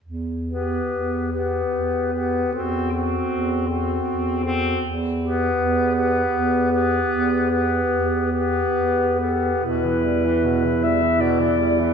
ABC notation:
X:1
M:3/4
L:1/16
Q:1/4=76
K:Em
V:1 name="Clarinet"
z2 B4 B4 B2 | A2 A4 A4 A2 | z2 B4 B4 B2- | B2 B4 B4 A2 |
B6 e2 d4 |]
V:2 name="Alto saxophone"
z2 G4 G4 G2 | F2 F4 F4 F2 | z2 G4 G4 G2- | G2 G4 G4 G2 |
E12 |]
V:3 name="Tenor saxophone"
z2 B,4 B,4 B,2 | C2 C4 C4 C2 | z2 B,4 B,4 B,2- | B,2 B,4 B,4 B,2 |
B,, E, G, E, B,, E, G, E, B,, E, G, E, |]
V:4 name="Bass clarinet" clef=bass
E,,4 E,,4 E,,4 | E,,4 E,,4 E,,4 | E,,4 E,,4 E,,4 | E,,4 E,,4 E,,4 |
E,,12 |]